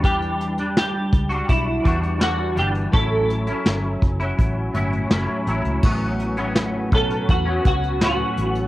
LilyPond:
<<
  \new Staff \with { instrumentName = "Clean electric guitar" } { \time 4/4 \key a \mixolydian \tempo 4 = 83 g'4 g'4 e'4 fis'8 g'8 | a'2. r4 | r4. a'8 fis'8 fis'8 fis'4 | }
  \new Staff \with { instrumentName = "Clean electric guitar" } { \time 4/4 \key a \mixolydian <e g d'>8. <g d'>4 <g d' fis'>8. <e g d' fis'>8 <e g d' fis'>8 <e g d'>8 | <a, fis cis' e'>8. <fis cis' e'>4 <fis cis' e'>8. <a, fis cis' e'>8 <a, fis cis' e'>8 <a, fis cis' e'>8 | <a, fis b cis'>8. <a, fis b cis'>8. <a, fis b cis'>8. <fis b cis'>8. <a, fis b cis'>4 | }
  \new Staff \with { instrumentName = "Fingered electric bass" } { \clef bass \time 4/4 \key a \mixolydian e,4. cis,8 b,,8 e,4 g,,8 | a,,4 g,,8 fis,,8 a,,8 g,,8 fis,,16 r16 a,,16 cis,16 | a,,4. b,,8 e,8 cis,4 a,,8 | }
  \new DrumStaff \with { instrumentName = "Drums" } \drummode { \time 4/4 <hh bd>16 hh16 hh16 hh16 <hh sn>8 <hh bd>16 hh16 <hh bd>8 <hh bd>16 hh16 <hh sn>8 hh16 hh16 | <hh bd>8 hh16 hh16 <hh sn>8 <hh bd>16 hh16 <hh bd>8 hh16 hh16 <hh sn>8 hh16 hh16 | <cymc bd>8 hh16 hh16 <hh sn>8 <hh bd>16 hh16 <hh bd>8 <hh bd>16 hh16 <hh sn>8 hh16 hh16 | }
>>